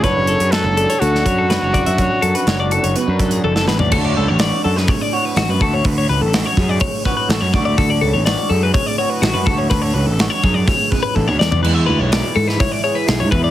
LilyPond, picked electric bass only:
\new Staff \with { instrumentName = "Picked electric bass" } { \clef bass \time 4/4 \key d \lydian \tempo 4 = 124 fis,,8. fis,8 fis,,8 r16 d,8 fis,8. fis,,8 fis,16~ | fis,16 r16 fis,16 r16 fis,,8. fis,,16 r16 fis,8. fis,,8 a,,8 | d,8 cis,16 a,,8 r16 fis,8 r4 a,,16 fis,16 d,8 | d,8 cis,16 a,,8 r16 fis,8 r4 a,,16 fis,16 d,8 |
d,8 cis,16 a,,8 r16 fis,8 r4 a,,16 fis,16 d,8 | d,8 cis,16 a,,8 r16 fis,8 r4 a,,16 d,16 e,8 | e,8 d,16 b,,8 r16 gis,8 r4 b,,16 gis,16 e,8 | }